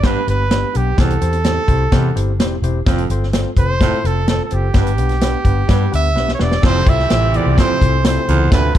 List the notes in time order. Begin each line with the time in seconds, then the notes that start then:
Already playing: G1
0.03 G2 B3 D4 G4 B4, kick, snare, closed hi-hat
0.27 G1 B3 D4 G4 B4, closed hi-hat
0.51 B3 D4 G4 B4, snare, closed hi-hat
0.73 B1 B3 D4 G4 B4, closed hi-hat
0.97 C2 E2 C4 E4 G4 A4 C5, kick, snare, closed hi-hat
1.10 closed hi-hat
1.21 E2 C4 E4 G4 C5, closed hi-hat
1.33 closed hi-hat
1.44 C4 E4 G4 C5, snare, closed hi-hat
1.67 C2 C4 E4 G4 C5, kick, closed hi-hat
1.92 E2 C3 C4 E4 G4 C5, kick, snare, closed hi-hat
2.15 G1 C4 E4 G4 C5, closed hi-hat
2.39 E1 C4 E4 G4 C5, snare, closed hi-hat
2.62 E1 C4 E4 G4 C5, closed hi-hat
2.86 F1 F2 C4 F4 A4 C5, kick, snare, closed hi-hat
2.98 closed hi-hat
3.09 G1 C4 F4 A4 C5, closed hi-hat
3.23 snare
3.33 C4 F4 A4 C5, snare, closed hi-hat
3.57 F1 C4 F4 A4 C5, kick, closed hi-hat
3.80 A2 C4 F4 A4 C5, kick, snare, closed hi-hat
4.04 F1 C4 F4 A4 C5, closed hi-hat
4.28 C4 F4 A4 C5, snare, closed hi-hat
4.45 A4
4.51 F#1 C4 F4 G4 A4 C5, closed hi-hat
4.74 G1 G2 B3 D4 G4 B4, kick, snare, closed hi-hat
4.87 closed hi-hat
4.98 B1 B3 D4 G4 B4, closed hi-hat
5.09 snare, closed hi-hat
5.21 B3 D4 G4 B4, snare, closed hi-hat
5.45 G1 B3 D4 G4 B4, kick, closed hi-hat
5.68 G2 B3 D4 G4 B4, kick, snare, closed hi-hat
5.92 D2 B3 D4 G4 B4 E5, closed hi-hat
6.15 B1 B3 D4 G4 B4, snare
6.28 snare
6.35 C#5
6.39 E1 B3 D4 G4 B4 D5, snare
6.52 snare
6.62 F1 F2 C3 E3 A3 C4 E4 F4 G4 A4 C5, kick, snare, crash
6.86 C2 C4 E4 F4 A4 E5, kick, closed hi-hat
6.99 snare
7.10 A1 C4 E4 F4 A4, snare, closed hi-hat
7.33 E2 C4 E4 F4 A4 D5, closed hi-hat
7.46 C2
7.57 F2 C4 E4 F4 A4 C5, kick, snare, closed hi-hat
7.70 muted fingered electric bass stroke
7.80 C2 C4 E4 F4 A4, kick, closed hi-hat
8.04 C4 E4 F4 A4 C5, snare, closed hi-hat
8.28 C#2 E2 C4 E4 F4 A4, closed hi-hat
8.51 D2 D3 C4 D4 F4 A4 B4, kick, snare, closed hi-hat
8.75 A1 C4 D4 A4, kick